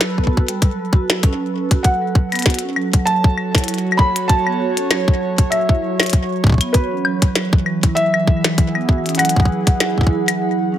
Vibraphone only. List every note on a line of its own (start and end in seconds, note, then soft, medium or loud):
0.01 0.17 F#3 medium
0.18 0.23 B3 loud
0.31 0.43 F#4 medium
0.49 0.61 G3 loud
0.62 0.69 F#3 medium
0.79 0.92 F#3 medium
0.93 1.04 F#4 loud
1.10 1.23 F#3 medium
1.23 1.34 C#4 medium
1.40 1.46 F#3 medium
1.54 1.60 C#4 medium
1.71 1.80 F#4 loud
1.85 1.96 F#3 medium
2.02 2.10 F#3 medium
2.15 2.31 F#3 medium
2.32 2.37 B3 loud
2.46 2.57 F#4 medium
2.63 2.76 C#4 medium
2.76 2.83 F#3 medium
2.94 3.06 F#3 medium
3.07 3.23 F#3 medium
3.24 3.33 F#3 medium
3.38 3.54 F#3 medium
3.55 3.60 E4 medium
3.68 3.75 F#3 loud
3.85 3.98 F#3 medium
3.99 4.10 F#3 medium
4.16 4.25 F#3 medium
4.29 4.46 F#3 medium
4.47 4.52 B3 medium
4.60 4.71 F#4 medium
4.77 4.90 C#4 medium
4.91 4.97 F#3 medium
5.08 5.20 F#3 medium
5.21 5.37 F#3 loud
5.38 5.47 F#3 medium
5.52 5.68 F#3 medium
5.69 5.74 E4 medium
5.82 5.89 F#3 loud
6.00 6.12 F#3 medium
6.13 6.24 F#3 medium
6.30 6.39 F#3 medium
6.44 6.60 F#3 medium
6.61 6.66 B3 loud
6.74 6.85 F#4 medium
6.91 7.04 C#4 medium
7.05 7.12 F#3 medium
7.22 7.34 F#3 medium
7.35 7.51 F#3 loud
7.53 7.61 F#3 medium
7.66 7.82 F#3 medium
7.83 7.89 E4 medium
7.97 8.03 F#3 loud
8.14 8.26 F#3 medium
8.28 8.38 F#3 medium
8.45 8.53 F#3 medium
8.58 8.74 F#3 medium
8.75 8.80 B3 loud
8.89 9.00 F#4 medium
9.06 9.19 C#4 medium
9.19 9.26 F#3 medium
9.36 9.49 F#3 medium
9.50 9.66 F#3 medium
9.67 9.76 F#3 medium
9.80 9.97 F#3 medium
9.98 10.03 E4 medium
10.11 10.18 F#3 loud
10.28 10.40 F#3 medium
10.42 10.53 F#3 medium
10.59 10.67 F#3 medium
10.72 10.79 C#4 medium